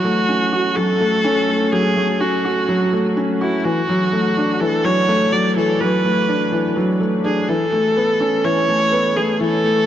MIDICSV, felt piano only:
0, 0, Header, 1, 2, 480
1, 0, Start_track
1, 0, Key_signature, 3, "minor"
1, 0, Tempo, 480000
1, 1725, Time_signature, 4, 2, 24, 8
1, 9863, End_track
2, 0, Start_track
2, 0, Title_t, "Felt piano"
2, 0, Program_c, 0, 0
2, 0, Control_c, 0, 64, 127
2, 45, Note_on_c, 0, 57, 77
2, 182, Note_off_c, 0, 57, 0
2, 288, Note_on_c, 0, 61, 75
2, 423, Note_off_c, 0, 61, 0
2, 527, Note_on_c, 0, 66, 78
2, 754, Note_off_c, 0, 66, 0
2, 766, Note_on_c, 0, 54, 73
2, 994, Note_off_c, 0, 54, 0
2, 1006, Note_on_c, 0, 57, 76
2, 1234, Note_off_c, 0, 57, 0
2, 1245, Note_on_c, 0, 61, 104
2, 1473, Note_off_c, 0, 61, 0
2, 1485, Note_on_c, 0, 57, 80
2, 1622, Note_off_c, 0, 57, 0
2, 1726, Note_on_c, 0, 54, 79
2, 1863, Note_off_c, 0, 54, 0
2, 1966, Note_on_c, 0, 57, 77
2, 2102, Note_off_c, 0, 57, 0
2, 2206, Note_on_c, 0, 61, 76
2, 2342, Note_off_c, 0, 61, 0
2, 2449, Note_on_c, 0, 66, 78
2, 2675, Note_off_c, 0, 66, 0
2, 2687, Note_on_c, 0, 54, 82
2, 2914, Note_off_c, 0, 54, 0
2, 2928, Note_on_c, 0, 57, 77
2, 3154, Note_off_c, 0, 57, 0
2, 3168, Note_on_c, 0, 61, 84
2, 3395, Note_off_c, 0, 61, 0
2, 3411, Note_on_c, 0, 66, 84
2, 3545, Note_off_c, 0, 66, 0
2, 3650, Note_on_c, 0, 52, 86
2, 3658, Control_c, 0, 64, 0
2, 3785, Note_off_c, 0, 52, 0
2, 3851, Control_c, 0, 64, 127
2, 3890, Note_on_c, 0, 54, 82
2, 4024, Note_off_c, 0, 54, 0
2, 4129, Note_on_c, 0, 57, 82
2, 4264, Note_off_c, 0, 57, 0
2, 4370, Note_on_c, 0, 62, 75
2, 4596, Note_off_c, 0, 62, 0
2, 4609, Note_on_c, 0, 52, 83
2, 4835, Note_off_c, 0, 52, 0
2, 4846, Note_on_c, 0, 54, 80
2, 5074, Note_off_c, 0, 54, 0
2, 5085, Note_on_c, 0, 57, 108
2, 5313, Note_off_c, 0, 57, 0
2, 5327, Note_on_c, 0, 54, 78
2, 5463, Note_off_c, 0, 54, 0
2, 5564, Note_on_c, 0, 52, 80
2, 5702, Note_off_c, 0, 52, 0
2, 5807, Note_on_c, 0, 54, 78
2, 5943, Note_off_c, 0, 54, 0
2, 6046, Note_on_c, 0, 57, 74
2, 6182, Note_off_c, 0, 57, 0
2, 6284, Note_on_c, 0, 62, 76
2, 6513, Note_off_c, 0, 62, 0
2, 6523, Note_on_c, 0, 52, 78
2, 6752, Note_off_c, 0, 52, 0
2, 6764, Note_on_c, 0, 54, 77
2, 6992, Note_off_c, 0, 54, 0
2, 7004, Note_on_c, 0, 57, 73
2, 7232, Note_off_c, 0, 57, 0
2, 7244, Note_on_c, 0, 62, 75
2, 7381, Note_off_c, 0, 62, 0
2, 7485, Note_on_c, 0, 52, 82
2, 7497, Control_c, 0, 64, 0
2, 7622, Note_off_c, 0, 52, 0
2, 7666, Control_c, 0, 64, 127
2, 7725, Note_on_c, 0, 57, 71
2, 7862, Note_off_c, 0, 57, 0
2, 7964, Note_on_c, 0, 59, 80
2, 8101, Note_off_c, 0, 59, 0
2, 8203, Note_on_c, 0, 61, 76
2, 8432, Note_off_c, 0, 61, 0
2, 8445, Note_on_c, 0, 52, 80
2, 8673, Note_off_c, 0, 52, 0
2, 8685, Note_on_c, 0, 57, 77
2, 8913, Note_off_c, 0, 57, 0
2, 8923, Note_on_c, 0, 59, 99
2, 9152, Note_off_c, 0, 59, 0
2, 9165, Note_on_c, 0, 57, 76
2, 9302, Note_off_c, 0, 57, 0
2, 9405, Note_on_c, 0, 52, 83
2, 9542, Note_off_c, 0, 52, 0
2, 9643, Note_on_c, 0, 57, 80
2, 9781, Note_off_c, 0, 57, 0
2, 9863, End_track
0, 0, End_of_file